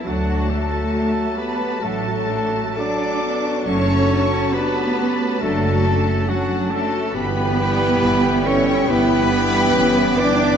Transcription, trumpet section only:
\new Staff \with { instrumentName = "Trumpet section" } { \time 4/4 \key d \major \tempo 4 = 68 fis'8 a'4 b'8 a'4 d''4 | cis''4 b'4 a'4 fis'8 a'8 | b'4. cis''8 b'4. d''8 | }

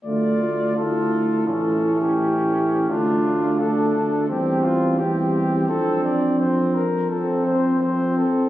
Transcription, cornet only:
\new Staff \with { instrumentName = "Cornet" } { \time 4/4 \key d \minor \tempo 4 = 85 d''4 a'4 a'8. g'4~ g'16 | f'4 a'4 g'8 f'8 g'4 | a'8 d''8 c''8 bes'8 a'8 c''8 c''8 a'8 | }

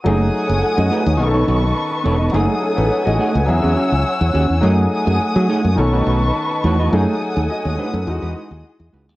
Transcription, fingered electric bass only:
\new Staff \with { instrumentName = "Fingered electric bass" } { \clef bass \time 4/4 \key fis \dorian \tempo 4 = 105 fis,,8 r16 fis,,16 r16 fis,16 r16 dis,16 b,,8 b,,8 r8 e,,8 | fis,,16 r8 a,,16 r16 a,,16 r16 cis,16 e,16 e,16 r16 cis,16 r16 e,16 dis,16 e,16 | fis,8 r16 fis,16 r16 fis16 r16 fis,16 b,,8 b,,8 r8 e,8 | fis,16 r8 dis,16 r16 dis,16 r16 fis,16 e,16 e,16 r16 dis,16 r16 e,16 cis,16 dis,16 | }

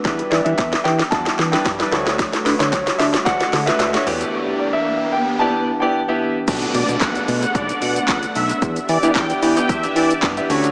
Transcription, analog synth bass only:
\new Staff \with { instrumentName = "Analog synth bass" } { \clef bass \time 4/4 \key e \dorian \tempo 4 = 112 e,8 e16 e16 e,8 e8 e,8 e8 g,8 d,8~ | d,8 d16 d16 d,8 d8 d,8 d8 d,8 e,8 | r1 | b,,8 b,16 b,16 b,,8 b,8 b,,8 b,8 cis,8 b,,8 |
e,8 e16 e16 e,8 e8 e,8 e8 g,8 d,8 | }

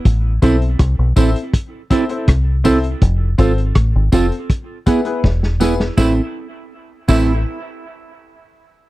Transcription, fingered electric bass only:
\new Staff \with { instrumentName = "Fingered electric bass" } { \clef bass \time 4/4 \key a \minor \tempo 4 = 81 a,,8 b,,8 c,16 b,,16 a,,16 r4 r16 c,4 | f,,8 gis,,8 a,,16 gis,,16 f,,16 r4 r16 e,,4 | a,,16 r4 r16 a,,8 r2 | }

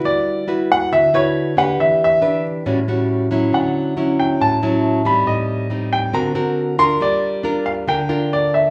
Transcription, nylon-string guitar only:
\new Staff \with { instrumentName = "Nylon-string guitar" } { \time 4/4 \key d \major \tempo 4 = 138 << { <e' fis' b'>4 <e' fis' b'>4. <e' fis' b'>4 <d' g' b'>8~ | <d' g' b'>4 <d' g' b'>4 <g cis' fis'>8 <g cis' fis'>4 <fis cis' e'>8~ | <fis cis' e'>4 <fis cis' e'>4. <fis cis' e'>4 <g c' ees'>8~ | <g c' ees'>4 <g c' ees'>4 <c' fis' ais'>8 <c' fis' ais'>4 <d' eis' ais'>8~ |
<d' eis' ais'>4 <d' f' bes'>4 <d' f' bes'>8 <d' f' bes'>4. | } \\ { g2 d2 | e2 a,2 | d2 a,2 | a,2 d2 |
g2 d2 | } >> }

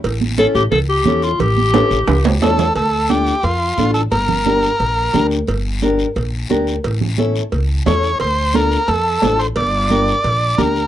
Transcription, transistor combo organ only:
\new Staff \with { instrumentName = "Transistor combo organ" } { \time 4/4 \key a \phrygian \tempo 4 = 176 r1 | r2. a'4 | \key d \minor a'4 g'4 f'4. a'8 | bes'2.~ bes'8 r8 |
r1 | r2. cis''4 | c''4 bes'4 a'4. c''8 | d''2. bes'4 | }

